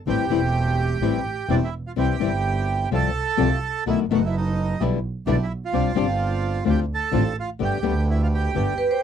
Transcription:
0.07 A1 E3 G3 A3 C4 E4 G4 G5
0.30 E1 E3 G3 A3 C4 E4 G4
1.01 A1 E3 G3 A3 C4 E4 G4
1.48 E1 E3 G3 A3 C4 D4 E4 G4 D5
1.64 E4 E5
1.87 F4 F5
1.96 C2 C3 E3 G3 C4 E4 G4 G5
2.20 G1 C3 E3 G3 C4 E4 G4
2.91 C2 C3 F3 G3 A3 C4 F4 G4 A4 A5
3.37 C2 C3 F3 G3 A3 C4 F4 G4 A4
3.86 B1 B2 D#3 A3 B3 D#4 E4 F#4 A4 E5
4.10 F#1 B2 D#3 A3 B3 D#4 F#4 A4
4.14 F#5
4.26 E4 E5
4.37 D#4 D#5
4.80 B1 B2 D3 G3 B3 D4 E4 G4
5.27 B1 B2 D3 G3 B3 D4 E4 G4
5.31 D4 D5
5.43 E4 E5
5.65 F4 F5
5.73 C2 C3 G3 C4 D4 G4
5.95 G1 C3 G3 C4 D4 G4
6.64 D2 D3 A3 C4 D4 F4
6.70 G4 G5
6.94 A4 A5
7.11 A1 D3 A3 C4 D4 F4
7.39 F4 F5
7.59 G1 D3 G3 A3 B3 G4
7.64 G4 G5
7.83 D2 D3 G3 A3 B3 G4
8.10 E4 E5
8.22 F4 F5
8.34 G4 G5
8.54 G1 D3 G3 A3 B3 G4
8.78 B4
8.91 C5

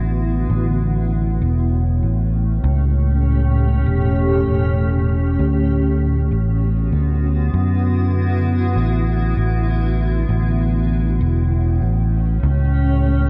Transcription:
Already playing: A1 D3 B3 E4 F#4
0.50 A1 A2
0.76 A3
1.36 C#4
1.42 E1
1.77 G4
2.03 A1
2.64 C#2
3.86 E1
4.47 E1
5.39 D2 D3
5.50 B3
5.69 F#4
6.11 E4
6.31 A1
6.92 D2
7.54 F#2
8.76 A1
9.37 A1
10.29 A1 A2
10.81 A3
10.91 C#4
11.21 E1
11.79 A1 G4
12.43 C#2

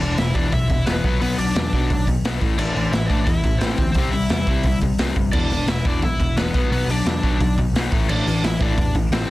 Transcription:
Already playing: D4 D5
0.00 E1 E2 B2, open hi-hat
0.17 E1 E2 B2 E4 E5, snare, open hi-hat
0.35 E1 E2 B2 E3 D4 D5, kick, open hi-hat
0.52 B1 E2 B2 E4 E5, kick, open hi-hat
0.70 E1 E2 B2, kick, open hi-hat
0.86 E1 E2 B2 E3 B3 B4, snare, open hi-hat
1.04 B1 B2 F#3 B3, kick, open hi-hat
1.21 B1 B2 F#3 B3 B4, open hi-hat
1.38 B1 B2 F#3 D4 D5, open hi-hat
1.55 E2 B2 F#3, snare, open hi-hat
1.73 B1 B2 F#3 B3, kick, open hi-hat
1.90 B1 B2 F#3, kick, open hi-hat
2.07 B2 F#3, kick, open hi-hat
2.24 B1 B2 F#3 B3, snare, open hi-hat
2.41 A1 A2 E3 A3, kick, open hi-hat
2.57 A1 A2 E3 A3 D4 D5, crash
2.75 A1 A2 E3, open hi-hat
2.92 A1 A2 E3 E4 E5, snare, open hi-hat
3.06 D4 D5, kick
3.10 A1 A2 E3 A3, open hi-hat
3.24 E2 A2 E3 E5, kick, open hi-hat
3.29 E4
3.44 A1 A2 E3, kick, open hi-hat
3.58 A1 A2 C4 C5, snare, open hi-hat
3.63 E3 A3
3.77 D2 A2 E3, kick, open hi-hat
3.92 C2 C4 C5, kick, open hi-hat
3.97 C3 G3 C4
4.11 C2 C3 G3 E4 E5, open hi-hat
4.30 E2 C3 G3, snare, open hi-hat
4.47 C2 C3 G3 C4, kick, open hi-hat
4.63 C2 C3 G3, kick, open hi-hat
4.81 C3 G3, kick, open hi-hat
4.98 C2 C3 G3 C4, snare, open hi-hat
5.16 G1 C3 G3, kick, open hi-hat
5.32 E1 E2 B2 E3 D4 D5, kick, crash
5.49 E1 E2 B2, open hi-hat
5.67 E1 E2 B2 E4 E5, snare, open hi-hat
5.85 E1 E2 B2 E3 D4 D5, kick, open hi-hat
6.02 B1 E2 B2 E4 E5, kick, open hi-hat
6.20 E1 E2 B2, kick, open hi-hat
6.36 E1 E2 B2 E3 B3 B4, snare, open hi-hat
6.54 B1 B2 F#3 B3, kick, open hi-hat
6.70 B1 B2 F#3 B3 B4, open hi-hat
6.87 B1 B2 F#3 D4 D5, open hi-hat
7.05 E2 B2 F#3, snare, open hi-hat
7.23 B1 B2 F#3 B3, kick, open hi-hat
7.40 B1 B2 F#3, kick, open hi-hat
7.58 B2 F#3, kick, open hi-hat
7.74 B1 B2 F#3 B3, snare, open hi-hat
7.92 A1 A2 E3 A3, kick, open hi-hat
8.09 A1 A2 E3 A3 D4 D5, crash
8.26 A1 A2 E3, open hi-hat
8.43 A1 A2 E3 E4 E5, snare, open hi-hat
8.60 A1 A2 E3 A3 D4 D5, kick, open hi-hat
8.78 E2 A2 E3, kick, open hi-hat
8.95 A1 A2 E3, kick, open hi-hat
9.11 A1 A2 E3 A3 C4 C5, snare, open hi-hat

